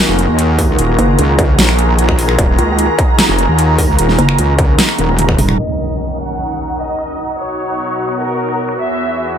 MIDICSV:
0, 0, Header, 1, 8, 480
1, 0, Start_track
1, 0, Tempo, 400000
1, 943, Time_signature, 4, 2, 24, 8
1, 11257, End_track
2, 0, Start_track
2, 0, Title_t, "Violin section"
2, 0, Program_c, 0, 48
2, 6703, Note_on_c, 0, 75, 94
2, 7329, Note_off_c, 0, 75, 0
2, 7424, Note_on_c, 0, 78, 88
2, 8049, Note_off_c, 0, 78, 0
2, 8144, Note_on_c, 0, 75, 88
2, 8769, Note_off_c, 0, 75, 0
2, 8863, Note_on_c, 0, 73, 90
2, 9729, Note_off_c, 0, 73, 0
2, 9823, Note_on_c, 0, 70, 88
2, 10449, Note_off_c, 0, 70, 0
2, 10543, Note_on_c, 0, 76, 96
2, 11169, Note_off_c, 0, 76, 0
2, 11257, End_track
3, 0, Start_track
3, 0, Title_t, "Ambient pad"
3, 0, Program_c, 1, 92
3, 0, Note_on_c, 1, 63, 85
3, 0, Note_on_c, 1, 70, 85
3, 0, Note_on_c, 1, 82, 94
3, 6689, Note_off_c, 1, 63, 0
3, 6704, Note_off_c, 1, 70, 0
3, 6704, Note_on_c, 1, 63, 80
3, 6727, Note_off_c, 1, 82, 0
3, 6844, Note_on_c, 1, 82, 73
3, 6934, Note_on_c, 1, 87, 85
3, 7320, Note_on_c, 1, 78, 88
3, 8623, Note_on_c, 1, 59, 85
3, 8723, Note_on_c, 1, 66, 88
3, 8808, Note_on_c, 1, 73, 80
3, 9391, Note_off_c, 1, 78, 0
3, 9392, Note_off_c, 1, 63, 0
3, 9392, Note_off_c, 1, 82, 0
3, 10545, Note_on_c, 1, 64, 93
3, 10631, Note_on_c, 1, 78, 75
3, 10646, Note_on_c, 1, 71, 81
3, 11003, Note_on_c, 1, 80, 71
3, 11257, Note_off_c, 1, 59, 0
3, 11257, Note_off_c, 1, 64, 0
3, 11257, Note_off_c, 1, 66, 0
3, 11257, Note_off_c, 1, 71, 0
3, 11257, Note_off_c, 1, 73, 0
3, 11257, Note_off_c, 1, 78, 0
3, 11257, Note_off_c, 1, 80, 0
3, 11257, Note_off_c, 1, 87, 0
3, 11257, End_track
4, 0, Start_track
4, 0, Title_t, "String section"
4, 0, Program_c, 2, 48
4, 0, Note_on_c, 2, 51, 80
4, 0, Note_on_c, 2, 58, 74
4, 0, Note_on_c, 2, 65, 73
4, 0, Note_on_c, 2, 66, 75
4, 0, Note_on_c, 2, 68, 88
4, 6656, Note_off_c, 2, 51, 0
4, 6656, Note_off_c, 2, 58, 0
4, 6656, Note_off_c, 2, 65, 0
4, 6656, Note_off_c, 2, 66, 0
4, 6679, Note_off_c, 2, 68, 0
4, 6703, Note_on_c, 2, 39, 73
4, 6703, Note_on_c, 2, 51, 65
4, 6703, Note_on_c, 2, 61, 63
4, 6703, Note_on_c, 2, 70, 65
4, 6703, Note_on_c, 2, 78, 81
4, 8604, Note_off_c, 2, 39, 0
4, 8604, Note_off_c, 2, 51, 0
4, 8604, Note_off_c, 2, 61, 0
4, 8604, Note_off_c, 2, 70, 0
4, 8604, Note_off_c, 2, 78, 0
4, 8622, Note_on_c, 2, 54, 67
4, 8622, Note_on_c, 2, 78, 81
4, 8623, Note_on_c, 2, 47, 69
4, 8623, Note_on_c, 2, 63, 68
4, 8623, Note_on_c, 2, 66, 65
4, 10524, Note_off_c, 2, 47, 0
4, 10524, Note_off_c, 2, 54, 0
4, 10524, Note_off_c, 2, 63, 0
4, 10524, Note_off_c, 2, 78, 0
4, 10543, Note_on_c, 2, 40, 75
4, 10543, Note_on_c, 2, 52, 66
4, 10543, Note_on_c, 2, 68, 66
4, 10544, Note_on_c, 2, 59, 67
4, 11257, Note_off_c, 2, 40, 0
4, 11257, Note_off_c, 2, 52, 0
4, 11257, Note_off_c, 2, 59, 0
4, 11257, Note_off_c, 2, 66, 0
4, 11257, Note_off_c, 2, 68, 0
4, 11257, End_track
5, 0, Start_track
5, 0, Title_t, "Wobble bass"
5, 0, Program_c, 3, 39
5, 105, Note_on_c, 3, 29, 99
5, 326, Note_off_c, 3, 29, 0
5, 344, Note_on_c, 3, 39, 98
5, 805, Note_off_c, 3, 39, 0
5, 825, Note_on_c, 3, 37, 99
5, 924, Note_off_c, 3, 37, 0
5, 943, Note_on_c, 3, 27, 96
5, 1164, Note_off_c, 3, 27, 0
5, 1423, Note_on_c, 3, 37, 98
5, 1884, Note_off_c, 3, 37, 0
5, 1902, Note_on_c, 3, 34, 101
5, 2844, Note_off_c, 3, 34, 0
5, 2863, Note_on_c, 3, 27, 96
5, 3084, Note_off_c, 3, 27, 0
5, 3945, Note_on_c, 3, 29, 101
5, 4165, Note_off_c, 3, 29, 0
5, 4185, Note_on_c, 3, 39, 98
5, 4646, Note_off_c, 3, 39, 0
5, 4665, Note_on_c, 3, 37, 98
5, 4764, Note_off_c, 3, 37, 0
5, 4783, Note_on_c, 3, 27, 96
5, 5004, Note_off_c, 3, 27, 0
5, 5263, Note_on_c, 3, 37, 94
5, 5724, Note_off_c, 3, 37, 0
5, 5984, Note_on_c, 3, 27, 97
5, 6445, Note_off_c, 3, 27, 0
5, 11257, End_track
6, 0, Start_track
6, 0, Title_t, "Wobble bass"
6, 0, Program_c, 4, 39
6, 1183, Note_on_c, 4, 30, 97
6, 1404, Note_off_c, 4, 30, 0
6, 3103, Note_on_c, 4, 37, 95
6, 3446, Note_off_c, 4, 37, 0
6, 5023, Note_on_c, 4, 30, 97
6, 5244, Note_off_c, 4, 30, 0
6, 6464, Note_on_c, 4, 27, 97
6, 6684, Note_off_c, 4, 27, 0
6, 11257, End_track
7, 0, Start_track
7, 0, Title_t, "Impact"
7, 0, Program_c, 5, 103
7, 6703, Note_on_c, 5, 60, 65
7, 8623, Note_off_c, 5, 60, 0
7, 11257, End_track
8, 0, Start_track
8, 0, Title_t, "Drums"
8, 224, Note_on_c, 9, 42, 52
8, 344, Note_off_c, 9, 42, 0
8, 463, Note_on_c, 9, 42, 76
8, 583, Note_off_c, 9, 42, 0
8, 703, Note_on_c, 9, 36, 61
8, 703, Note_on_c, 9, 46, 89
8, 823, Note_off_c, 9, 36, 0
8, 823, Note_off_c, 9, 46, 0
8, 943, Note_on_c, 9, 42, 73
8, 1063, Note_off_c, 9, 42, 0
8, 1183, Note_on_c, 9, 42, 49
8, 1303, Note_off_c, 9, 42, 0
8, 1423, Note_on_c, 9, 42, 75
8, 1543, Note_off_c, 9, 42, 0
8, 1663, Note_on_c, 9, 36, 105
8, 1663, Note_on_c, 9, 42, 50
8, 1783, Note_off_c, 9, 36, 0
8, 1783, Note_off_c, 9, 42, 0
8, 1904, Note_on_c, 9, 38, 115
8, 1904, Note_on_c, 9, 42, 77
8, 2024, Note_off_c, 9, 38, 0
8, 2024, Note_off_c, 9, 42, 0
8, 2025, Note_on_c, 9, 26, 68
8, 2144, Note_on_c, 9, 42, 51
8, 2145, Note_off_c, 9, 26, 0
8, 2264, Note_off_c, 9, 42, 0
8, 2383, Note_on_c, 9, 42, 76
8, 2503, Note_off_c, 9, 42, 0
8, 2505, Note_on_c, 9, 26, 58
8, 2505, Note_on_c, 9, 36, 61
8, 2623, Note_on_c, 9, 46, 95
8, 2625, Note_off_c, 9, 26, 0
8, 2625, Note_off_c, 9, 36, 0
8, 2743, Note_off_c, 9, 46, 0
8, 2745, Note_on_c, 9, 26, 54
8, 2863, Note_on_c, 9, 36, 115
8, 2863, Note_on_c, 9, 42, 77
8, 2865, Note_off_c, 9, 26, 0
8, 2983, Note_off_c, 9, 36, 0
8, 2983, Note_off_c, 9, 42, 0
8, 3103, Note_on_c, 9, 42, 53
8, 3223, Note_off_c, 9, 42, 0
8, 3343, Note_on_c, 9, 42, 78
8, 3463, Note_off_c, 9, 42, 0
8, 3583, Note_on_c, 9, 36, 100
8, 3583, Note_on_c, 9, 42, 51
8, 3703, Note_off_c, 9, 36, 0
8, 3703, Note_off_c, 9, 42, 0
8, 3823, Note_on_c, 9, 38, 109
8, 3823, Note_on_c, 9, 42, 75
8, 3943, Note_off_c, 9, 38, 0
8, 3943, Note_off_c, 9, 42, 0
8, 4063, Note_on_c, 9, 42, 51
8, 4183, Note_off_c, 9, 42, 0
8, 4303, Note_on_c, 9, 42, 76
8, 4423, Note_off_c, 9, 42, 0
8, 4542, Note_on_c, 9, 46, 99
8, 4543, Note_on_c, 9, 36, 59
8, 4662, Note_off_c, 9, 46, 0
8, 4663, Note_off_c, 9, 36, 0
8, 4783, Note_on_c, 9, 42, 82
8, 4903, Note_off_c, 9, 42, 0
8, 4905, Note_on_c, 9, 38, 37
8, 5023, Note_on_c, 9, 42, 54
8, 5025, Note_off_c, 9, 38, 0
8, 5143, Note_off_c, 9, 42, 0
8, 5144, Note_on_c, 9, 26, 61
8, 5262, Note_on_c, 9, 42, 82
8, 5264, Note_off_c, 9, 26, 0
8, 5382, Note_off_c, 9, 42, 0
8, 5503, Note_on_c, 9, 36, 107
8, 5503, Note_on_c, 9, 42, 55
8, 5623, Note_off_c, 9, 36, 0
8, 5623, Note_off_c, 9, 42, 0
8, 5743, Note_on_c, 9, 38, 117
8, 5743, Note_on_c, 9, 42, 80
8, 5863, Note_off_c, 9, 38, 0
8, 5863, Note_off_c, 9, 42, 0
8, 5865, Note_on_c, 9, 26, 62
8, 5983, Note_on_c, 9, 42, 53
8, 5983, Note_on_c, 9, 48, 63
8, 5985, Note_off_c, 9, 26, 0
8, 6103, Note_off_c, 9, 42, 0
8, 6103, Note_off_c, 9, 48, 0
8, 6105, Note_on_c, 9, 48, 61
8, 6223, Note_on_c, 9, 42, 80
8, 6223, Note_on_c, 9, 47, 78
8, 6225, Note_off_c, 9, 48, 0
8, 6343, Note_off_c, 9, 42, 0
8, 6343, Note_off_c, 9, 47, 0
8, 6345, Note_on_c, 9, 26, 53
8, 6345, Note_on_c, 9, 36, 61
8, 6345, Note_on_c, 9, 47, 79
8, 6462, Note_on_c, 9, 45, 99
8, 6462, Note_on_c, 9, 46, 100
8, 6465, Note_off_c, 9, 26, 0
8, 6465, Note_off_c, 9, 36, 0
8, 6465, Note_off_c, 9, 47, 0
8, 6582, Note_off_c, 9, 45, 0
8, 6582, Note_off_c, 9, 46, 0
8, 6584, Note_on_c, 9, 26, 53
8, 6584, Note_on_c, 9, 45, 86
8, 6704, Note_off_c, 9, 26, 0
8, 6704, Note_off_c, 9, 45, 0
8, 8384, Note_on_c, 9, 26, 55
8, 8504, Note_off_c, 9, 26, 0
8, 9706, Note_on_c, 9, 26, 54
8, 9826, Note_off_c, 9, 26, 0
8, 10185, Note_on_c, 9, 26, 49
8, 10303, Note_on_c, 9, 42, 52
8, 10305, Note_off_c, 9, 26, 0
8, 10423, Note_off_c, 9, 42, 0
8, 10425, Note_on_c, 9, 26, 45
8, 10543, Note_on_c, 9, 42, 75
8, 10545, Note_off_c, 9, 26, 0
8, 10663, Note_off_c, 9, 42, 0
8, 10783, Note_on_c, 9, 42, 50
8, 10903, Note_off_c, 9, 42, 0
8, 11023, Note_on_c, 9, 42, 74
8, 11143, Note_off_c, 9, 42, 0
8, 11257, End_track
0, 0, End_of_file